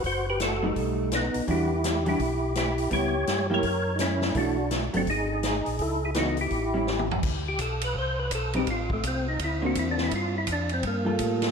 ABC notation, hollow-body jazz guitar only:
X:1
M:4/4
L:1/8
Q:"Swing" 1/4=167
K:Amix
V:1 name="Hollow-body jazz guitar"
z3 [G,A,^D]3 z2 | [E,G,DF] z2 [E,G,DF] z4 | [G,B,E] z2 [F,^A,EG] z4 | [E,A,D] z2 [F,A,=C] z4 |
z2 [E,B,^D] z2 [G,CE] z2 | [K:Bphr] z6 z [G,C^D] | z4 z [D,_B,CF]3 | z4 z [G,=FA]3 |]